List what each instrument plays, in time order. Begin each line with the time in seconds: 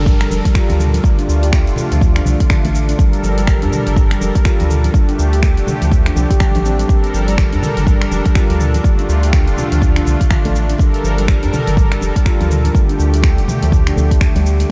Already playing: sub bass G1, analog synth pad G3 D4 A4 A#4, downlifter
0.06 handpan G3, kick, high conga, cabasa
0.20 handpan G3, finger snap, closed hi-hat, muted conga, cabasa
0.31 sub bass F1, high conga, cabasa
0.45 handpan G3, kick, closed hi-hat, muted conga, high conga, cabasa
0.55 handpan F4, finger snap, kick, cabasa
0.70 sub bass D2, closed hi-hat, muted conga, high conga, cabasa
0.80 handpan D3, mid tom, cabasa
0.94 closed hi-hat, high conga, cabasa
1.03 analog synth pad D3 A3 F4, handpan G3, kick, muted conga, cabasa
1.19 handpan D4, closed hi-hat, cabasa
1.28 sub bass D2, muted conga, cabasa
1.43 handpan G4, closed hi-hat, cabasa
1.53 handpan A3, finger snap, kick, muted conga, cabasa
1.67 sub bass D1, closed hi-hat, cabasa
1.76 handpan D3, mid tom, high conga, low conga, cabasa
1.91 sub bass D2, handpan F3, closed hi-hat, mid tom, muted conga, cabasa
2.01 kick, high conga, cabasa
2.16 handpan D4, finger snap, closed hi-hat, muted conga, cabasa
2.25 sub bass C2, handpan D3, high conga, low conga, cabasa
2.40 kick, closed hi-hat, muted conga, cabasa
2.50 handpan D3, finger snap, kick, high conga, cabasa
2.65 sub bass A1, handpan A3, closed hi-hat, muted conga, high conga, cabasa
2.75 cabasa
2.89 handpan D4, closed hi-hat, cabasa
2.99 analog synth pad G3 A4 A#4, handpan G3, kick, muted conga, cabasa
3.13 closed hi-hat, cabasa
3.23 sub bass G1, handpan F3, muted conga, cabasa
3.38 handpan G3, closed hi-hat, cabasa
3.47 finger snap, kick, muted conga, cabasa
3.62 sub bass G2, handpan D4, closed hi-hat, cabasa
3.72 handpan D3, mid tom, low conga, cabasa
3.87 sub bass G1, closed hi-hat, mid tom, muted conga, cabasa
3.96 handpan G3, kick, high conga, cabasa
4.11 handpan G3, finger snap, closed hi-hat, muted conga, cabasa
4.21 sub bass F1, high conga, cabasa
4.35 handpan G3, kick, closed hi-hat, muted conga, high conga, cabasa
4.45 handpan F4, finger snap, kick, cabasa
4.60 sub bass D2, closed hi-hat, muted conga, high conga, cabasa
4.70 handpan D3, mid tom, cabasa
4.84 closed hi-hat, high conga, cabasa
4.94 analog synth pad D3 A3 D4 G4, handpan G3, kick, muted conga, cabasa
5.09 handpan D4, closed hi-hat, cabasa
5.19 sub bass D2, muted conga, cabasa
5.33 handpan G4, closed hi-hat, cabasa
5.43 handpan A3, finger snap, kick, muted conga, cabasa
5.57 sub bass D1, closed hi-hat, cabasa
5.67 handpan D3, mid tom, high conga, low conga, cabasa
5.82 sub bass D2, handpan F3, closed hi-hat, mid tom, muted conga, cabasa
5.92 kick, high conga, cabasa
6.06 handpan D4, finger snap, closed hi-hat, muted conga, cabasa
6.16 sub bass C2, handpan D4, high conga, low conga, cabasa
6.31 handpan G4, kick, closed hi-hat, cabasa
6.40 handpan G3, finger snap, kick, high conga, cabasa
6.55 sub bass A1, handpan D4, closed hi-hat, muted conga, high conga, cabasa
6.65 handpan C4, cabasa
6.79 handpan G3, closed hi-hat, cabasa
6.89 analog synth pad G3 A4 A#4, handpan G3, kick, muted conga, cabasa
7.04 closed hi-hat, cabasa
7.14 sub bass G1, handpan F3, muted conga, cabasa
7.28 handpan G3, closed hi-hat, cabasa
7.38 finger snap, kick, muted conga, cabasa
7.53 sub bass G2, handpan D4, closed hi-hat, cabasa
7.62 handpan D3, mid tom, low conga, cabasa
7.77 sub bass G1, closed hi-hat, mid tom, muted conga, cabasa
7.87 handpan G3, kick, high conga, cabasa
8.01 handpan G3, finger snap, closed hi-hat, muted conga, cabasa
8.11 sub bass F1, high conga, cabasa
8.25 handpan G3, kick, closed hi-hat, muted conga, high conga, cabasa
8.35 handpan F4, finger snap, kick, cabasa
8.50 sub bass D2, closed hi-hat, muted conga, high conga, cabasa
8.60 handpan D3, mid tom, cabasa
8.74 closed hi-hat, high conga, cabasa
8.84 analog synth pad D3 A3 F4, handpan G3, kick, muted conga, cabasa
8.99 handpan D4, closed hi-hat, cabasa
9.09 sub bass D2, muted conga, cabasa
9.23 handpan G4, closed hi-hat, cabasa
9.33 handpan A3, finger snap, kick, muted conga, cabasa
9.47 sub bass D1, handpan D4, closed hi-hat, cabasa
9.57 handpan D3, mid tom, high conga, low conga, cabasa
9.72 sub bass D2, handpan F3, closed hi-hat, mid tom, muted conga, cabasa
9.82 kick, high conga, cabasa
9.96 handpan D4, finger snap, closed hi-hat, muted conga, cabasa
10.05 sub bass C2, handpan D3, high conga, low conga, cabasa
10.21 kick, closed hi-hat, muted conga, cabasa
10.31 handpan D3, finger snap, kick, high conga, cabasa
10.45 sub bass A1, handpan A3, closed hi-hat, muted conga, high conga, cabasa
10.56 cabasa
10.70 handpan D4, closed hi-hat, cabasa
10.78 analog synth pad G3 A4 A#4, handpan G3, kick, muted conga, cabasa
10.94 closed hi-hat, cabasa
11.04 sub bass G1, handpan F3, muted conga, cabasa
11.18 handpan G3, closed hi-hat, cabasa
11.28 finger snap, kick, muted conga, cabasa
11.43 sub bass G2, handpan D4, closed hi-hat, cabasa
11.53 handpan D3, mid tom, low conga, cabasa
11.67 sub bass G1, closed hi-hat, mid tom, muted conga, cabasa
11.77 handpan G3, kick, high conga, cabasa
11.92 handpan G3, finger snap, closed hi-hat, muted conga, cabasa
12.01 sub bass F1, high conga, cabasa
12.15 handpan G3, kick, closed hi-hat, muted conga, high conga, cabasa
12.26 handpan F4, finger snap, kick, cabasa
12.40 sub bass D2, closed hi-hat, muted conga, high conga, cabasa
12.50 handpan D3, mid tom, cabasa
12.65 closed hi-hat, high conga, cabasa
12.74 analog synth pad D3 A3 G4, handpan G3, kick, muted conga, cabasa
12.89 handpan D4, closed hi-hat, cabasa
12.99 sub bass D2, muted conga, cabasa
13.14 handpan G4, closed hi-hat, cabasa
13.23 handpan A3, finger snap, kick, muted conga, cabasa
13.38 sub bass D1, handpan D4, closed hi-hat, cabasa
13.48 handpan D3, mid tom, high conga, low conga, cabasa
13.62 sub bass D2, handpan F3, closed hi-hat, mid tom, muted conga, cabasa
13.72 kick, high conga, cabasa
13.87 handpan D4, finger snap, closed hi-hat, muted conga, cabasa
13.96 sub bass D2, handpan A3, high conga, low conga, cabasa
14.11 kick, closed hi-hat, cabasa
14.21 handpan A3, finger snap, kick, high conga, cabasa
14.35 sub bass D2, handpan G3, closed hi-hat, muted conga, high conga, cabasa
14.46 cabasa
14.60 handpan A3, closed hi-hat, cabasa